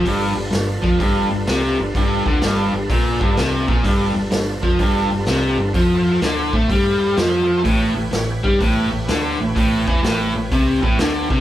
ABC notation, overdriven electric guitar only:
X:1
M:4/4
L:1/8
Q:"Swing" 1/4=126
K:G
V:1 name="Overdriven electric guitar" clef=bass
G,, G,, G,, =F, G,, G,, C, G,, | G,, D, G,, G,, _B,, G,, C, B,, | G,, G,, G,, =F, G,, G,, C, G,, | =F,2 D, A, G,2 F,2 |
A,, A,, A,, G, A,, A,, D, A,, | A,, E, A,, A,, C, A,, D, C, |]